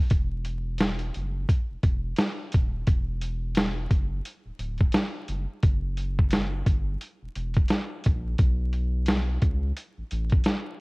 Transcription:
0.10 E1, kick, closed hi-hat
0.45 closed hi-hat
0.78 snare, closed hi-hat
0.99 closed hi-hat
1.14 F#1, closed hi-hat
1.49 kick, closed hi-hat
1.71 E1
1.83 E1, kick, closed hi-hat
2.17 snare, closed hi-hat
2.52 D#1, kick, closed hi-hat
2.87 E1, kick, closed hi-hat
3.21 closed hi-hat
3.55 snare, closed hi-hat
3.91 F#1, kick, closed hi-hat
4.25 closed hi-hat
4.46 D1
4.59 D1, closed hi-hat
4.78 kick, closed hi-hat
4.92 snare, closed hi-hat
5.28 F#1, closed hi-hat
5.63 F#1, kick, closed hi-hat
5.97 closed hi-hat
6.19 kick
6.30 snare, closed hi-hat
6.66 G1, kick, closed hi-hat
7.01 closed hi-hat
7.23 E1
7.35 E1, closed hi-hat
7.54 kick, closed hi-hat
7.68 snare, closed hi-hat
8.04 A#1, kick, closed hi-hat
8.38 B1, kick, closed hi-hat
8.73 closed hi-hat
9.06 snare, closed hi-hat
9.42 C#2, kick, closed hi-hat
9.77 closed hi-hat
9.98 A1
10.11 A1, closed hi-hat
10.30 kick, closed hi-hat
10.44 snare, closed hi-hat

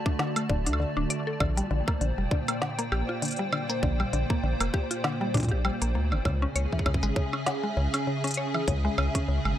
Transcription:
Already playing: D3 A3 F#4 D5 A5
0.06 D4, kick
0.19 D3, snare
0.36 A3, closed hi-hat, high woodblock
0.49 D1 D3, kick
0.66 D2 D4, closed hi-hat
0.73 high woodblock
0.80 D3
0.97 D1 D4
1.10 D5, closed hi-hat
1.27 A4
1.40 A#1 A#2 D3, kick, high woodblock
1.54 G3 A#3, closed hi-hat
1.71 A#1 D3
1.83 C5
1.88 A#3, kick, high woodblock
2.01 A#1 D3, closed hi-hat
2.07 G5
2.18 F1 G3
2.31 D3, kick
2.48 A#3, closed hi-hat, high woodblock
2.62 D3, snare
2.79 A#3, closed hi-hat
2.92 A#1 G4, high woodblock
3.09 F4
3.22 D3, closed hi-hat
3.25 closed hi-hat
3.28 closed hi-hat
3.31 closed hi-hat
3.32 closed hi-hat
3.39 G3
3.53 D3, high woodblock
3.69 A#3, closed hi-hat
3.83 A#1 D3, kick
4.00 G3, high woodblock
4.13 A#1 D3, closed hi-hat
4.30 A#3, kick
4.43 A#1 D3
4.60 F1 A#3, closed hi-hat, high woodblock
4.74 G4, kick
4.91 F4, closed hi-hat
5.04 D3, snare, high woodblock
5.21 G3
5.34 A#2 D4, kick, closed hi-hat
5.37 kick, closed hi-hat
5.40 kick, closed hi-hat
5.43 kick, closed hi-hat
5.44 kick, closed hi-hat
5.49 A#1 G4, kick, closed hi-hat
5.65 G3, high woodblock
5.82 A#1 A#3, closed hi-hat
5.95 D2 A#3
6.12 G1 D3, high woodblock
6.25 C#2 C#3, kick, high woodblock
6.35 C#4
6.42 C#4 G#5
6.52 C#2 G#4 C#5, closed hi-hat
6.73 E3, kick
6.79 kick
6.86 C#2 C#3, kick, high woodblock
6.94 E5, kick
7.03 G#1 G#3, closed hi-hat
7.16 C#3, kick
7.33 C#4, high woodblock
7.46 C#3, snare, closed hi-hat
7.63 G#3
7.77 C#2 C#3
7.94 C#4, closed hi-hat, high woodblock
8.07 C#3
8.24 C#4, closed hi-hat
8.27 closed hi-hat
8.31 closed hi-hat
8.34 C#5, closed hi-hat
8.54 E3, high woodblock
8.68 C#2 C#3, kick, closed hi-hat
8.85 G#3
8.98 C#2 C#3, high woodblock
9.15 C#4, kick, closed hi-hat
9.28 C#2 C#3
9.45 G#1 G#3, high woodblock

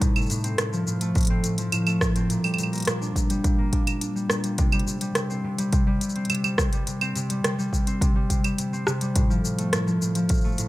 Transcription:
Already playing: C4 D#4
0.01 A2, kick, closed hi-hat, shaker
0.16 A3, claves, shaker
0.22 shaker
0.26 A2, closed hi-hat, shaker
0.31 shaker
0.36 shaker
0.40 C4, closed hi-hat, shaker
0.45 shaker
0.58 A2, cross-stick, closed hi-hat, shaker
0.73 F3, shaker
0.87 A2, shaker
1.01 A3, closed hi-hat, shaker
1.15 A2, kick, closed hi-hat, shaker
1.18 closed hi-hat
1.21 closed hi-hat
1.23 closed hi-hat
1.25 closed hi-hat
1.27 C4, closed hi-hat
1.44 A2, closed hi-hat, shaker
1.58 F3, closed hi-hat, shaker
1.72 A2, closed hi-hat, claves, shaker
1.87 A3, claves, shaker
2.01 A2, kick, cross-stick, shaker
2.16 C4, closed hi-hat, shaker
2.30 A#2, closed hi-hat, shaker
2.44 G3, claves, shaker
2.54 claves
2.58 A#2, closed hi-hat, shaker
2.63 claves
2.73 A#3, closed hi-hat, shaker
2.76 closed hi-hat
2.78 closed hi-hat
2.80 closed hi-hat
2.82 closed hi-hat
2.85 A#2, cross-stick, closed hi-hat
2.87 closed hi-hat, shaker
3.01 D4, shaker
3.16 A#2, kick, closed hi-hat, shaker
3.30 G3, closed hi-hat, shaker
3.44 A#2, kick, closed hi-hat, shaker
3.59 A#3
3.73 D4, kick, closed hi-hat
3.87 A#3, closed hi-hat, claves, shaker
4.01 D4, closed hi-hat, shaker
4.15 G3, shaker
4.30 A#2, cross-stick, shaker
4.44 G3, closed hi-hat, shaker
4.58 C3, kick, closed hi-hat, shaker
4.72 G3, claves, shaker
4.79 closed hi-hat
4.87 C3, shaker
5.01 G3, closed hi-hat, shaker
5.15 C3, cross-stick, closed hi-hat, shaker
5.30 C4, shaker
5.44 C3
5.58 G3, closed hi-hat, shaker
5.73 C3, kick, closed hi-hat, shaker
5.87 G3
6.01 C3, closed hi-hat, shaker
6.09 shaker
6.16 C4, closed hi-hat
6.25 closed hi-hat
6.30 C3, closed hi-hat, claves, shaker
6.35 closed hi-hat
6.44 G3, claves, shaker
6.58 C3, kick, cross-stick, shaker
6.73 G3, closed hi-hat, shaker
6.87 C3, closed hi-hat, shaker
7.01 C4, claves, shaker
7.16 C3, closed hi-hat, shaker
7.30 G3, closed hi-hat, shaker
7.44 C3, cross-stick, closed hi-hat, shaker
7.59 G3, shaker
7.73 C3, kick, shaker
7.87 C4, closed hi-hat, shaker
8.01 C3, kick, closed hi-hat, shaker
8.16 G3
8.30 C3, kick, closed hi-hat, shaker
8.44 G3, closed hi-hat, claves, shaker
8.58 C3, closed hi-hat, shaker
8.73 C4, shaker
8.87 C3, cross-stick, shaker
9.01 G3, closed hi-hat, shaker
9.16 A2, kick, closed hi-hat, shaker
9.30 F3, shaker
9.44 A2, shaker
9.59 A3, closed hi-hat, shaker
9.73 A2, cross-stick, closed hi-hat, shaker
9.87 F3, shaker
10.02 A2, shaker
10.15 F3, closed hi-hat, shaker
10.29 A2, kick, closed hi-hat, shaker
10.34 shaker
10.37 shaker
10.41 A3, shaker
10.45 shaker
10.48 shaker
10.52 shaker
10.55 A2, closed hi-hat, shaker
10.59 shaker

